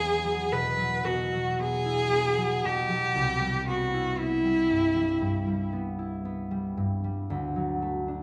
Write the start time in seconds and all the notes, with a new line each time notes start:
Already playing: E2 F#3 E4 G#4
0.00 B3
0.25 F#3
0.52 B2 B4
0.78 F#3
1.05 B2 F#4
1.32 F#3
1.59 B3 G#4
1.86 E4
2.12 B3
2.38 F#3
2.64 B2 G4
2.89 F#3
3.15 C2
3.41 G3
3.67 B3 F#4
3.94 E4
4.19 B3 E4
4.45 G3
4.71 G2
4.96 G3
5.21 G2
5.47 G3
5.73 B3
5.99 E4
6.25 B3
6.51 G3
6.77 G2
7.04 G3
7.30 D2
7.56 F#3
7.82 A3
8.08 D4